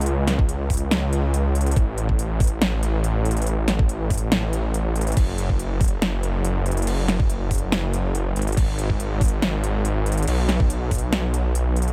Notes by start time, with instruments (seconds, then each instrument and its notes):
Already playing: detuned saw bass C#2
0.01 closed hi-hat
0.06 closed hi-hat
0.27 snare, closed hi-hat
0.39 kick
0.49 closed hi-hat
0.70 kick, closed hi-hat, open hi-hat
0.77 closed hi-hat
0.91 snare, closed hi-hat
1.13 closed hi-hat
1.34 closed hi-hat
1.55 closed hi-hat
1.61 closed hi-hat
1.66 closed hi-hat
1.71 closed hi-hat
1.76 detuned saw bass A1, kick, closed hi-hat
1.98 closed hi-hat
2.09 kick
2.19 closed hi-hat
2.40 kick, closed hi-hat, open hi-hat
2.47 closed hi-hat
2.62 snare, closed hi-hat
2.83 closed hi-hat
3.04 closed hi-hat
3.25 closed hi-hat
3.31 closed hi-hat
3.37 closed hi-hat
3.42 closed hi-hat
3.47 closed hi-hat
3.68 snare, closed hi-hat
3.79 kick
3.89 closed hi-hat
4.10 kick, closed hi-hat, open hi-hat
4.18 closed hi-hat
4.32 snare, closed hi-hat
4.53 closed hi-hat
4.74 closed hi-hat
4.96 closed hi-hat
5.01 closed hi-hat
5.07 closed hi-hat
5.12 closed hi-hat
5.17 detuned saw bass F#1, kick, closed hi-hat, crash
5.38 closed hi-hat
5.50 kick
5.59 closed hi-hat
5.81 kick, closed hi-hat, open hi-hat
5.88 closed hi-hat
6.02 snare, closed hi-hat
6.23 closed hi-hat
6.45 closed hi-hat
6.66 closed hi-hat
6.71 closed hi-hat
6.77 closed hi-hat
6.82 closed hi-hat
6.87 closed hi-hat, crash
7.08 snare, closed hi-hat
7.20 kick
7.30 closed hi-hat
7.51 kick, closed hi-hat, open hi-hat
7.58 closed hi-hat
7.72 snare, closed hi-hat
7.93 closed hi-hat
8.15 closed hi-hat
8.36 detuned saw bass G#1, closed hi-hat
8.42 closed hi-hat
8.47 closed hi-hat
8.52 closed hi-hat
8.57 kick, closed hi-hat, crash
8.79 closed hi-hat
8.90 kick
9.00 closed hi-hat
9.21 kick, closed hi-hat, open hi-hat
9.28 closed hi-hat
9.42 snare, closed hi-hat
9.64 closed hi-hat
9.85 closed hi-hat
10.06 closed hi-hat
10.12 closed hi-hat
10.18 closed hi-hat
10.23 closed hi-hat
10.28 detuned saw bass B1, closed hi-hat, crash
10.49 snare, closed hi-hat
10.60 kick
10.70 closed hi-hat
10.91 kick, closed hi-hat, open hi-hat
10.98 closed hi-hat
11.13 snare, closed hi-hat
11.34 closed hi-hat
11.55 closed hi-hat
11.76 closed hi-hat
11.82 closed hi-hat
11.88 closed hi-hat